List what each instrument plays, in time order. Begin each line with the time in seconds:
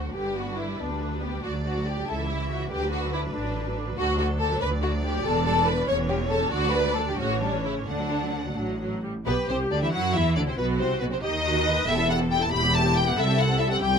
Already playing: viola section F#4, violin section F#4 C5
0.06 viola section F#3
0.15 double bass section G1, cello section G2, viola section D3 D4, violin section G4 B4
0.27 viola section G3
0.37 viola section B3, violin section F#4
0.48 viola section G3
0.59 viola section D3, violin section E4
0.69 viola section G3
0.79 double bass section D2, cello section D2, viola section B3, violin section D4
0.91 viola section G3
1.01 viola section D3
1.12 viola section G3
1.22 viola section B3, violin section G4
1.33 viola section G3
1.43 cello section D2, double bass section D2, viola section D3, violin section F#4 D5
1.54 viola section F#3
1.64 viola section A3, violin section F#4
1.75 viola section F#3
1.86 viola section D3, violin section G4
1.97 viola section F#3
2.07 cello section C#2, double bass section C#2, viola section C#3 E4, violin section A4 E5
2.18 viola section E3
2.29 viola section G3, violin section E4
2.39 viola section E3
2.50 viola section C#3, violin section F#4
2.61 viola section E3
2.71 double bass section D2, cello section D2, viola section D3 D4, violin section G4 B4
2.82 viola section F#3
2.92 viola section D3, violin section F#4
3.03 viola section F#3
3.13 viola section D3, violin section E4
3.24 viola section F#3
3.33 double bass section A1, cello section A2, viola section D3, violin section D4
3.45 viola section F#3
3.56 viola section D3
3.67 viola section F#3
3.78 viola section D3
3.89 viola section F#3
3.97 double bass section D2, cello section D2, viola section D3, violin section F#4 A4
4.09 viola section F#3
4.19 viola section D3, violin section F#4
4.30 viola section F#3
4.40 viola section D3, violin section A4
4.51 viola section F#3
4.60 cello section D2, double bass section D2, viola section D3, violin section B4 D5
4.72 viola section F#3
4.82 viola section D3, violin section F#4
4.93 viola section F#3
5.03 viola section D3, violin section G4
5.14 viola section F#3
5.25 double bass section E1, cello section E2, viola section D3 D4, violin section A4
5.35 viola section E3
5.46 viola section G3, violin section A4
5.57 viola section E3
5.67 viola section D3, violin section B4
5.79 viola section E3
5.88 double bass section E1, cello section E2, viola section C#3 C#4, violin section C#5
6.00 viola section E3
6.09 viola section G3, violin section G4
6.21 viola section E3
6.29 viola section C#3, violin section A4
6.41 viola section E3
6.52 cello section D2, double bass section D2, viola section D3 D4, violin section F#4 D5
6.65 viola section F#3
6.74 viola section A3, violin section B4
6.87 viola section F#3
6.96 viola section D3, violin section A4
7.08 viola section F#3, violin section G4
7.18 double bass section A1, cello section A2, viola section C#3 C#4, violin section F#4 C#5
7.31 viola section E3
7.41 viola section G3, violin section D4
7.54 viola section E3
7.65 viola section C#3, violin section E4
7.77 viola section E3
7.88 double bass section D2, cello section D3, viola section D3 A3, violin section D4 F#5
8.00 viola section F#3
8.11 viola section D3
8.23 viola section F#3
8.34 viola section D3
8.45 viola section F#3
8.57 double bass section A1, cello section A2, viola section F#3
8.80 viola section F#3
9.04 viola section G3
9.26 double bass section B1, cello section B2, violin section B3 B4, viola section G4
9.48 double bass section C2, cello section C3, violin section C4 C5
9.70 double bass section D2, cello section D3, violin section D4 D5
9.82 cello section E3, violin section E4 E5
9.91 double bass section F#2, cello section F#3, viola section E4, violin section F#4 F#5
10.14 double bass section E2, cello section E3, violin section E4 E5
10.35 double bass section D2, cello section D3, violin section D4 D5
10.47 cello section C3, violin section C4 C5
10.57 double bass section B1, cello section B2, violin section B3 B4, viola section F#4
10.79 double bass section C2, cello section C3, violin section C4 C5
11.00 double bass section B1, cello section B2, violin section B3 B4
11.11 cello section C3, violin section C4 C5
11.21 double bass section D#2, cello section D#3, violin section D#4 D#5, viola section G4
11.45 viola section F#4
11.67 viola section B4
11.87 double bass section E1, cello section E2, violin section E4 G4 E5, viola section A4
11.98 violin section B3 E4
12.08 violin section E4 G4 F#5
12.20 violin section B3 E4
12.30 violin section E4 G4 G5
12.41 violin section B3 E4 A5
12.52 double bass section E1, cello section E2, violin section E4 G4 B5, viola section G4
12.63 violin section B3 E4
12.74 violin section E4 G4 A5
12.84 violin section B3 E4
12.96 violin section E4 G4 G5
13.07 violin section B3 E4 F#5
13.16 cello section C2, double bass section C2, violin section E4 E5, viola section A4
13.28 violin section C4 G4
13.38 violin section E4 F#5
13.49 violin section C4 G4
13.58 violin section E4 E5
13.70 violin section C4 G4 F#5
13.80 cello section C2, double bass section C2, violin section E4 G5, viola section G4
13.90 violin section C4 G4